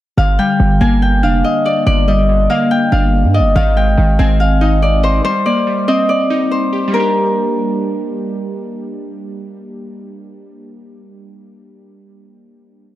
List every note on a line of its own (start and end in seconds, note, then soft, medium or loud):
0.17 0.38 G1 loud
0.17 0.58 D3 medium
0.17 1.23 F5 loud
0.39 1.44 G3 medium
0.39 0.87 G5 medium
0.60 0.80 G1 loud
0.60 1.65 D3 medium
0.81 1.25 G1 loud
0.81 1.87 A#3 loud
0.81 1.08 G#5 medium
1.02 2.57 G5 medium
1.23 1.43 F1 loud
1.23 2.29 D4 medium
1.23 2.49 F5 medium
1.44 1.72 D#5 medium
1.65 2.71 D5 medium
1.65 1.86 D5 medium
1.86 2.47 G1 loud
1.86 2.28 D3 medium
1.86 2.14 D5 loud
2.08 3.13 G3 medium
2.08 3.34 D#5 medium
2.29 3.34 D3 medium
2.50 3.56 A#3 loud
2.50 2.92 F5 medium
2.71 3.76 G5 loud
2.92 3.25 G1 loud
2.92 3.55 D4 medium
2.92 3.55 F5 medium
3.24 3.41 G2 loud
3.34 3.55 D5 medium
3.34 4.61 D#5 medium
3.40 3.55 G1 loud
3.56 3.96 G#1 loud
3.56 3.96 D#3 medium
3.56 4.40 F5 loud
3.77 4.82 G#3 medium
3.77 4.25 G5 medium
3.98 4.18 G#1 loud
3.98 5.03 D#3 medium
4.19 5.21 G#1 loud
4.19 5.25 C4 loud
4.19 5.69 G#5 medium
4.40 6.06 F5 medium
4.61 5.25 D#4 medium
4.61 4.88 D#5 medium
4.82 5.45 D5 medium
5.03 5.24 C5 medium
5.03 5.24 D#5 medium
5.24 5.66 G3 medium
5.24 6.51 C5 loud
5.46 6.51 A#3 medium
5.46 5.94 D5 medium
5.67 6.72 G3 medium
5.88 6.94 C4 medium
5.88 6.15 D#5 medium
6.09 7.94 D5 medium
6.30 6.94 D#4 medium
6.51 8.49 C5 medium
6.73 6.94 G4 medium
6.88 11.69 G3 medium
6.92 11.73 A#3 medium
6.92 9.06 A#4 medium
6.96 11.77 D4 medium
6.96 11.81 G4 medium